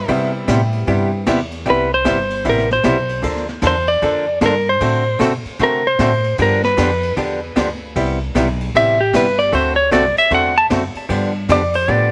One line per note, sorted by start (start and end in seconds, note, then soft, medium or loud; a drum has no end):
0.08 0.30 C3 medium
0.08 0.47 C3 medium
0.08 1.18 G3 medium
0.08 0.30 G3 medium
0.08 0.30 B3 medium
0.08 1.19 B3 medium
0.08 1.19 C4 medium
0.08 0.31 E4 medium
0.08 1.19 E4 medium
0.08 0.31 G4 medium
0.08 1.19 G4 medium
0.08 kick soft
0.08 ride medium
0.48 0.86 A2 loud
0.48 0.60 C3 medium
0.48 0.60 G3 medium
0.48 0.60 B3 medium
0.48 0.60 E4 medium
0.48 0.60 G4 medium
0.48 kick soft
0.48 snare medium
0.48 hi-hat pedal medium
0.48 ride medium
0.73 ride medium
0.87 1.26 G2 medium
0.87 1.09 C3 medium
0.87 1.09 G3 medium
0.87 1.09 B3 medium
0.87 1.09 E4 medium
0.87 1.09 G4 medium
0.87 kick soft
0.87 ride medium
1.26 1.65 E2 loud
1.26 1.38 C3 medium
1.26 1.38 G3 medium
1.26 1.39 B3 medium
1.26 1.39 E4 medium
1.26 1.39 G4 medium
1.26 kick soft
1.26 snare medium
1.26 hi-hat pedal medium
1.26 ride medium
1.51 ride soft
1.66 2.04 C2 medium
1.66 1.88 C3 medium
1.66 1.88 G3 medium
1.66 1.88 B3 medium
1.66 1.88 E4 medium
1.66 1.88 G4 medium
1.66 kick soft
1.66 ride medium
1.70 1.93 B4 medium
1.94 2.47 C5 medium
2.05 2.44 G1 medium
2.05 2.17 C3 medium
2.05 2.17 G3 medium
2.05 2.17 B3 medium
2.05 2.17 E4 medium
2.05 2.17 G4 medium
2.05 kick soft
2.05 snare medium
2.05 hi-hat pedal medium
2.05 ride medium
2.30 ride soft
2.45 2.83 A1 medium
2.45 2.67 C3 medium
2.45 2.67 G3 medium
2.45 2.67 B3 medium
2.45 2.67 E4 medium
2.45 2.67 G4 medium
2.45 kick soft
2.45 ride medium
2.49 2.72 A#4 medium
2.58 snare soft
2.71 3.22 C5 medium
2.71 snare medium
2.84 3.22 B1 medium
2.84 2.96 C3 medium
2.84 2.96 G3 medium
2.84 2.96 B3 medium
2.84 2.96 E4 medium
2.84 2.96 G4 medium
2.84 kick soft
2.84 snare medium
2.84 hi-hat pedal medium
2.84 ride medium
3.09 ride soft
3.22 3.62 D2 medium
3.22 3.45 D3 medium
3.22 3.45 F3 medium
3.22 3.45 A#3 medium
3.22 3.45 D4 medium
3.22 3.46 A4 medium
3.22 kick soft
3.22 ride medium
3.36 snare soft
3.49 snare soft
3.62 4.01 E2 medium
3.62 3.74 D3 medium
3.62 3.74 F3 medium
3.62 3.75 A#3 medium
3.62 3.74 D4 medium
3.62 3.75 A4 medium
3.62 kick soft
3.62 snare medium
3.62 hi-hat pedal medium
3.62 ride medium
3.67 3.90 C5 medium
3.87 4.38 D5 loud
3.87 ride medium
4.02 4.41 F2 medium
4.02 4.24 D3 medium
4.02 4.24 F3 medium
4.02 4.24 A#3 medium
4.02 4.25 D4 medium
4.02 4.25 A4 medium
4.02 kick soft
4.02 ride medium
4.41 4.80 G2 loud
4.41 4.53 D3 medium
4.41 4.53 F3 medium
4.41 4.53 A#3 medium
4.41 4.54 D4 medium
4.41 4.54 A4 medium
4.41 kick soft
4.41 snare medium
4.41 hi-hat pedal medium
4.41 ride medium
4.46 4.68 A#4 medium
4.69 5.18 C5 loud
4.80 5.19 A2 medium
4.80 5.03 D3 medium
4.80 5.03 A3 medium
4.80 5.03 C4 medium
4.80 5.03 F#4 medium
4.80 5.03 A4 medium
4.80 kick soft
4.80 ride medium
5.19 5.44 B2 medium
5.19 5.31 D3 medium
5.19 5.32 A3 medium
5.19 5.32 C4 medium
5.19 5.32 F#4 medium
5.19 5.32 A4 medium
5.19 kick soft
5.19 snare medium
5.19 hi-hat pedal medium
5.19 ride medium
5.45 muted upright bass stroke soft
5.45 ride soft
5.59 5.98 C3 medium
5.59 5.81 D3 medium
5.59 5.82 A3 medium
5.59 5.82 C4 medium
5.59 5.82 F#4 medium
5.59 5.82 A4 medium
5.59 kick soft
5.59 ride medium
5.63 5.86 A#4 medium
5.87 6.36 C5 loud
5.99 6.37 A2 medium
5.99 6.11 D3 medium
5.99 6.11 A3 medium
5.99 6.11 C4 medium
5.99 6.11 F#4 medium
5.99 6.12 A4 medium
5.99 kick soft
5.99 snare medium
5.99 hi-hat pedal medium
5.99 ride medium
6.24 ride soft
6.38 6.77 G2 medium
6.38 6.60 D3 medium
6.38 6.60 F3 medium
6.38 6.61 B3 medium
6.38 6.61 D4 medium
6.38 6.61 G4 medium
6.38 kick soft
6.38 ride medium
6.42 6.64 A#4 medium
6.64 7.14 B4 medium
6.64 snare medium
6.77 7.16 F2 loud
6.77 6.89 D3 medium
6.77 6.89 F3 medium
6.77 6.89 B3 medium
6.77 6.90 D4 medium
6.77 6.90 G4 medium
6.77 kick soft
6.77 snare medium
6.77 hi-hat pedal medium
6.77 ride medium
7.03 ride medium
7.17 7.55 E2 medium
7.17 7.38 D3 medium
7.17 7.39 F3 medium
7.17 7.39 B3 medium
7.17 7.39 D4 medium
7.17 7.39 G4 medium
7.17 kick soft
7.17 ride medium
7.56 7.95 D2 medium
7.56 7.68 D3 medium
7.56 7.68 F3 medium
7.56 7.68 B3 medium
7.56 7.68 D4 medium
7.56 7.68 G4 medium
7.56 kick soft
7.56 snare medium
7.56 hi-hat pedal medium
7.56 ride medium
7.96 8.34 C2 medium
7.96 8.17 C3 medium
7.96 8.18 G3 medium
7.96 8.18 B3 medium
7.96 8.18 E4 medium
7.96 8.18 G4 medium
7.96 kick soft
7.96 ride medium
8.35 8.73 B1 loud
8.35 8.46 C3 medium
8.35 8.47 G3 medium
8.35 8.47 B3 medium
8.35 8.47 E4 medium
8.35 8.47 G4 medium
8.35 kick soft
8.35 snare medium
8.35 hi-hat pedal medium
8.35 ride medium
8.61 ride medium
8.74 9.13 A1 medium
8.74 8.96 C3 medium
8.74 8.97 G3 medium
8.74 8.97 B3 medium
8.74 8.97 E4 medium
8.74 8.97 G4 medium
8.74 9.00 E5 medium
8.74 kick soft
8.74 ride medium
9.01 9.14 G4 medium
9.13 9.52 G1 loud
9.13 9.25 C3 medium
9.13 9.25 G3 medium
9.13 9.25 B3 medium
9.13 9.25 E4 medium
9.13 9.26 G4 medium
9.13 9.39 B4 medium
9.13 kick soft
9.13 snare medium
9.13 hi-hat pedal medium
9.13 ride medium
9.39 9.53 D5 loud
9.39 ride medium
9.52 9.91 D2 medium
9.52 9.74 D3 medium
9.52 9.74 A3 medium
9.52 9.75 C4 medium
9.52 9.75 F#4 medium
9.52 9.74 A4 medium
9.52 9.76 C5 medium
9.52 kick soft
9.52 ride medium
9.76 9.91 C#5 medium
9.91 10.15 C2 medium
9.91 10.03 D3 medium
9.91 10.03 A3 medium
9.91 10.03 C4 medium
9.91 10.04 F#4 medium
9.91 10.04 A4 medium
9.91 10.17 D5 medium
9.91 kick soft
9.91 snare medium
9.91 hi-hat pedal medium
9.91 ride medium
10.17 10.32 E5 medium
10.17 muted upright bass stroke soft
10.17 ride medium
10.31 10.69 E2 medium
10.31 10.52 D3 medium
10.31 10.53 A3 medium
10.31 10.53 C4 medium
10.31 10.53 F#4 medium
10.31 10.53 A4 medium
10.31 10.57 F#5 medium
10.31 kick soft
10.31 ride medium
10.58 10.66 A5 loud
10.70 10.94 F#2 loud
10.70 10.82 D3 medium
10.70 10.82 A3 medium
10.70 10.82 C4 medium
10.70 10.82 F#4 medium
10.70 10.82 A4 medium
10.70 kick soft
10.70 snare medium
10.70 hi-hat pedal medium
10.70 ride medium
10.94 muted upright bass stroke soft
10.94 ride medium
11.09 11.48 G2 medium
11.09 11.31 D3 medium
11.09 11.31 F3 medium
11.09 11.31 B3 medium
11.09 11.31 D4 medium
11.09 11.31 G4 medium
11.09 kick soft
11.09 ride medium
11.48 11.87 F2 loud
11.48 11.61 D3 medium
11.48 11.61 F3 medium
11.48 11.61 B3 medium
11.48 11.61 D4 medium
11.48 11.61 G4 medium
11.48 11.75 D5 medium
11.48 kick soft
11.48 snare medium
11.48 hi-hat pedal medium
11.48 ride medium
11.74 11.91 C5 medium
11.74 ride medium
11.88 12.12 A2 medium
11.88 12.10 D3 medium
11.88 12.10 F3 medium
11.88 12.10 B3 medium
11.88 12.10 D4 medium
11.88 12.10 G4 medium
11.88 12.12 D5 medium
11.88 kick soft